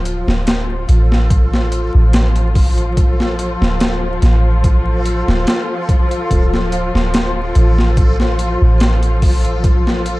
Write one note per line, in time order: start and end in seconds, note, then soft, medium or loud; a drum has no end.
0.00 0.24 D1 medium
0.00 10.20 F3 medium
0.00 10.20 F4 medium
0.00 10.20 A4 medium
0.05 closed hi-hat medium
0.27 0.85 D1 medium
0.27 snare medium
0.47 snare loud
0.47 closed hi-hat medium
0.89 1.90 A1 medium
0.89 closed hi-hat medium
1.12 snare medium
1.30 kick loud
1.30 closed hi-hat medium
1.54 snare medium
1.72 closed hi-hat medium
1.95 3.57 A1 medium
2.13 snare loud
2.13 closed hi-hat medium
2.36 closed hi-hat soft
2.55 kick loud
2.55 open hi-hat medium
2.78 closed hi-hat soft
2.97 kick loud
2.97 closed hi-hat medium
3.20 snare medium
3.39 closed hi-hat medium
3.61 4.19 D1 medium
3.61 snare medium
3.80 snare loud
3.80 closed hi-hat loud
4.22 5.24 A1 medium
4.22 snare soft
4.22 closed hi-hat medium
4.64 kick loud
4.64 closed hi-hat medium
5.05 closed hi-hat medium
5.28 5.45 D1 loud
5.28 snare medium
5.47 snare loud
5.47 closed hi-hat medium
5.89 kick loud
5.89 closed hi-hat medium
6.11 closed hi-hat soft
6.31 6.90 D1 loud
6.31 kick loud
6.31 closed hi-hat medium
6.54 snare soft
6.72 closed hi-hat medium
6.94 7.52 D1 medium
6.94 snare medium
7.14 snare loud
7.14 closed hi-hat loud
7.55 8.57 A1 medium
7.55 closed hi-hat medium
7.78 snare soft
7.97 kick loud
7.97 closed hi-hat medium
8.20 snare medium
8.39 closed hi-hat medium
8.62 10.20 A1 loud
8.80 snare loud
8.80 closed hi-hat medium
9.03 closed hi-hat soft
9.22 kick loud
9.22 open hi-hat medium
9.45 closed hi-hat soft
9.64 kick loud
9.64 closed hi-hat medium
9.87 snare medium
10.06 closed hi-hat medium